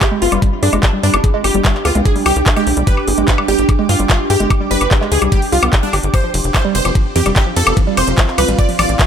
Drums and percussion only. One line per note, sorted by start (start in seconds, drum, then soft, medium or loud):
0.01 kick loud
0.01 clap loud
0.01 closed hi-hat medium
0.01 high woodblock medium
0.22 open hi-hat loud
0.32 closed hi-hat medium
0.32 high woodblock soft
0.42 kick loud
0.42 closed hi-hat medium
0.63 open hi-hat loud
0.73 closed hi-hat medium
0.73 high woodblock soft
0.83 kick loud
0.83 clap loud
0.83 closed hi-hat medium
1.03 open hi-hat loud
1.14 closed hi-hat medium
1.14 high woodblock medium
1.24 kick loud
1.24 closed hi-hat medium
1.44 open hi-hat loud
1.44 high woodblock soft
1.54 closed hi-hat medium
1.65 kick loud
1.65 clap loud
1.65 closed hi-hat medium
1.75 clap soft
1.85 open hi-hat loud
1.85 high woodblock soft
1.95 closed hi-hat medium
2.05 kick loud
2.05 closed hi-hat medium
2.16 open hi-hat medium
2.26 open hi-hat loud
2.26 high woodblock medium
2.36 closed hi-hat medium
2.46 kick loud
2.46 clap loud
2.46 closed hi-hat medium
2.56 high woodblock soft
2.67 open hi-hat loud
2.77 closed hi-hat medium
2.87 kick loud
2.87 closed hi-hat medium
2.97 high woodblock soft
3.08 open hi-hat loud
3.18 closed hi-hat medium
3.28 kick loud
3.28 clap loud
3.28 closed hi-hat medium
3.38 high woodblock medium
3.48 open hi-hat loud
3.59 closed hi-hat medium
3.69 kick loud
3.69 closed hi-hat medium
3.69 high woodblock soft
3.89 open hi-hat loud
3.99 closed hi-hat medium
4.10 kick loud
4.10 clap loud
4.10 closed hi-hat medium
4.10 high woodblock soft
4.30 open hi-hat loud
4.40 closed hi-hat medium
4.50 kick loud
4.50 closed hi-hat medium
4.50 high woodblock medium
4.71 open hi-hat loud
4.81 closed hi-hat medium
4.81 high woodblock soft
4.91 kick loud
4.91 clap loud
4.91 closed hi-hat medium
5.01 clap soft
5.12 open hi-hat loud
5.22 closed hi-hat medium
5.22 high woodblock soft
5.32 kick loud
5.32 closed hi-hat medium
5.42 open hi-hat medium
5.52 open hi-hat loud
5.63 closed hi-hat medium
5.63 high woodblock medium
5.73 kick loud
5.73 clap loud
5.73 closed hi-hat medium
5.93 open hi-hat loud
5.93 high woodblock soft
6.03 closed hi-hat medium
6.14 kick loud
6.14 closed hi-hat medium
6.14 high woodblock soft
6.34 open hi-hat loud
6.34 ride medium
6.44 closed hi-hat medium
6.54 kick loud
6.54 clap loud
6.54 closed hi-hat medium
6.54 high woodblock medium
6.75 open hi-hat loud
6.75 ride medium
6.85 closed hi-hat medium
6.85 high woodblock soft
6.95 kick loud
6.95 closed hi-hat medium
7.16 open hi-hat loud
7.16 ride medium
7.26 closed hi-hat medium
7.26 high woodblock soft
7.36 kick loud
7.36 clap loud
7.36 closed hi-hat medium
7.56 open hi-hat loud
7.56 ride medium
7.67 closed hi-hat medium
7.67 high woodblock medium
7.77 kick loud
7.77 closed hi-hat medium
7.97 open hi-hat loud
7.97 ride medium
7.97 high woodblock soft
8.08 closed hi-hat medium
8.18 kick loud
8.18 clap loud
8.18 closed hi-hat medium
8.28 clap soft
8.38 open hi-hat loud
8.38 ride medium
8.38 high woodblock soft
8.48 closed hi-hat medium
8.59 kick loud
8.59 closed hi-hat medium
8.69 open hi-hat medium
8.79 open hi-hat loud
8.79 ride medium
8.79 high woodblock medium
8.89 closed hi-hat medium
8.99 kick loud
8.99 clap loud
8.99 closed hi-hat medium